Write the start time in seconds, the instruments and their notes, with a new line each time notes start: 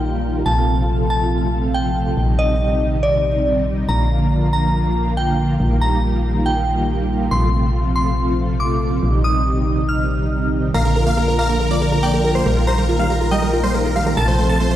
Already playing: fm bass A#1, synth bell G5, downlifter
0.03 analog synth pad D#3 G3 A#3 F4
0.24 analog synth pad D#3 G3 A#3 F4
0.46 fm bass A#1, analog synth pad C3 F3 A3 F4, synth bell A5
0.67 analog synth pad C3 F3 A3 F4
0.89 analog synth pad C3 F3 A3 F4
1.10 analog synth pad C3 F3 A3 F4, synth bell A5
1.31 analog synth pad C3 F3 A3 F4
1.53 analog synth pad C3 F3 A3 F4
1.74 analog synth pad C3 F3 A3 F4, synth bell G5
1.96 analog synth pad C3 F3 A3 F4
2.17 fm bass A#1, analog synth pad C3 D#3 G3 D#4
2.39 analog synth pad C3 D#3 G3 D#4, synth bell D#5
2.60 analog synth pad C3 D#3 G3 D#4
2.81 analog synth pad C3 D#3 G3 D#4
3.03 analog synth pad C3 D#3 G3 D#4, synth bell D5
3.24 analog synth pad C3 D#3 G3 D#4
3.46 analog synth pad C3 D#3 G3 D#4
3.67 analog synth pad C3 D#3 G3 D#4
3.89 fm bass A#1, analog synth pad D3 F3 A#3 F4, synth bell A#5
4.10 analog synth pad D3 F3 A#3 F4
4.32 analog synth pad D3 F3 A#3 F4
4.53 analog synth pad D3 F3 A#3 F4, synth bell A#5
4.74 analog synth pad D3 F3 A#3 F4
4.96 analog synth pad D3 F3 A#3 F4
5.17 analog synth pad D3 F3 A#3 F4, synth bell G5
5.39 analog synth pad D3 F3 A#3 F4
5.60 fm bass A#1, analog synth pad D#3 G3 A#3 F4
5.81 analog synth pad D#3 G3 A#3 F4, synth bell A#5
6.03 analog synth pad D#3 G3 A#3 F4
6.24 analog synth pad D#3 G3 A#3 F4
6.46 analog synth pad D#3 G3 A#3 F4, synth bell G5
6.67 analog synth pad D#3 G3 A#3 F4
6.88 analog synth pad D#3 G3 A#3 F4
7.10 analog synth pad D#3 G3 A#3 F4
7.31 fm bass A#1, analog synth pad C3 F3 A3 F4, synth bell C6
7.53 analog synth pad C3 F3 A3 F4
7.74 analog synth pad C3 F3 A3 F4
7.96 analog synth pad C3 F3 A3 F4, synth bell C6
8.17 analog synth pad C3 F3 A3 F4
8.39 analog synth pad C3 F3 A3 F4
8.60 analog synth pad C3 F3 A3 F4, synth bell D6
8.82 analog synth pad C3 F3 A3 F4
9.03 fm bass A#1, analog synth pad C3 D#3 G3 D#4
9.24 analog synth pad C3 D#3 G3 D#4, synth bell D#6
9.46 analog synth pad C3 D#3 G3 D#4
9.67 analog synth pad C3 D#3 G3 D#4
9.89 analog synth pad C3 D#3 G3 D#4, synth bell F6
10.10 analog synth pad C3 D#3 G3 D#4
10.31 analog synth pad C3 D#3 G3 D#4
10.53 analog synth pad C3 D#3 G3 D#4
10.74 fm bass A#1, analog synth pad D3 F3 A#3 F4, synth arpeggio sound A#3, supersaw synth F5, grand piano F5, synth bell A#5
10.85 synth arpeggio sound A#3, grand piano A#4, supersaw synth A#4
10.96 analog synth pad D3 F3 A#3 F4, synth arpeggio sound A#4, grand piano A#4, supersaw synth A#4
11.07 synth arpeggio sound A#3, supersaw synth F5, grand piano F5
11.17 analog synth pad D3 F3 A#3 F4, synth arpeggio sound A#3, grand piano A#4, supersaw synth A#4
11.28 synth arpeggio sound A#4, supersaw synth A#4, grand piano A#4
11.39 analog synth pad D3 F3 A#3 F4, synth arpeggio sound A#3, supersaw synth F5, grand piano F5, synth bell A#5
11.49 synth arpeggio sound A#3, supersaw synth A#4, grand piano A#4
11.60 analog synth pad D3 F3 A#3 F4, supersaw synth A#4, synth arpeggio sound A#4, grand piano A#4
11.71 synth arpeggio sound A#3, supersaw synth D5, grand piano D5
11.82 analog synth pad D3 F3 A#3 F4, synth arpeggio sound A#3, supersaw synth A#4, grand piano A#4
11.92 supersaw synth A#4, synth arpeggio sound A#4, grand piano A#4
12.03 analog synth pad D3 F3 A#3 F4, synth arpeggio sound A#3, supersaw synth D5, grand piano D5, synth bell G5
12.14 synth arpeggio sound A#3, supersaw synth A#4, grand piano A#4
12.24 analog synth pad D3 F3 A#3 F4, supersaw synth A#4, synth arpeggio sound A#4, grand piano A#4
12.35 synth arpeggio sound A#3, supersaw synth C5, grand piano C5
12.46 fm bass A#1, analog synth pad D#3 G3 A#3 F4, synth arpeggio sound G3, supersaw synth A#4, grand piano A#4
12.57 synth arpeggio sound F4, supersaw synth A#4, grand piano A#4
12.67 analog synth pad D#3 G3 A#3 F4, synth arpeggio sound G3, supersaw synth C5, grand piano C5, synth bell A#5
12.78 synth arpeggio sound G3, supersaw synth A#4, grand piano A#4
12.89 analog synth pad D#3 G3 A#3 F4, synth arpeggio sound F4, supersaw synth A#4, grand piano A#4
12.99 synth arpeggio sound G3, supersaw synth F5, grand piano F5
13.10 analog synth pad D#3 G3 A#3 F4, synth arpeggio sound G3, supersaw synth A#4, grand piano A#4
13.21 synth arpeggio sound F4, supersaw synth A#4, grand piano A#4
13.31 analog synth pad D#3 G3 A#3 F4, synth arpeggio sound G3, supersaw synth D#5, grand piano D#5, synth bell G5
13.42 synth arpeggio sound G3, supersaw synth A#4, grand piano A#4
13.53 analog synth pad D#3 G3 A#3 F4, synth arpeggio sound F4, supersaw synth A#4, grand piano A#4
13.64 synth arpeggio sound G3, supersaw synth C5, grand piano C5
13.74 analog synth pad D#3 G3 A#3 F4, synth arpeggio sound G3, supersaw synth A#4, grand piano A#4
13.85 synth arpeggio sound F4, supersaw synth A#4, grand piano A#4
13.96 analog synth pad D#3 G3 A#3 F4, synth arpeggio sound G3, supersaw synth F5, grand piano F5
14.06 synth arpeggio sound G3, supersaw synth A#4, grand piano A#4
14.17 fm bass A#1, analog synth pad C3 F3 A3 F4, synth arpeggio sound A4, synth bell A5, supersaw synth A5, grand piano A5
14.28 synth arpeggio sound A3, supersaw synth C5, grand piano C5
14.39 analog synth pad C3 F3 A3 F4, synth arpeggio sound A3, supersaw synth C5, grand piano C5
14.49 synth arpeggio sound A4, grand piano A5, supersaw synth A5
14.60 analog synth pad C3 F3 A3 F4, synth arpeggio sound A3, grand piano C5, supersaw synth C5
14.71 synth arpeggio sound A3, supersaw synth C5